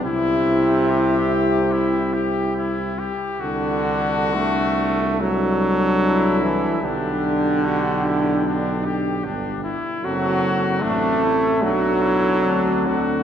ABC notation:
X:1
M:4/4
L:1/8
Q:1/4=72
K:G
V:1 name="Flugelhorn"
G6- G z | A2 A2 A4 | G6- G z | A2 A2 A4 |]
V:2 name="Cornet"
E2 G2 E G E G | F4- F z E2 | D2 F E D G D E | F2 D E F E D F |]
V:3 name="Euphonium"
E6- E z | D2 D2 D4 | D6- D z | C2 C2 D2 C2 |]
V:4 name="Trombone" clef=bass
C,6- C, z | D,2 A,2 F,3 E, | D,6- D, z | F,2 A,2 F,3 D, |]
V:5 name="Tuba" clef=bass
C,,6- C,, z | C,,8 | B,,,6 G,,, z | F,,,2 A,,,2 B,,,2 D,,2 |]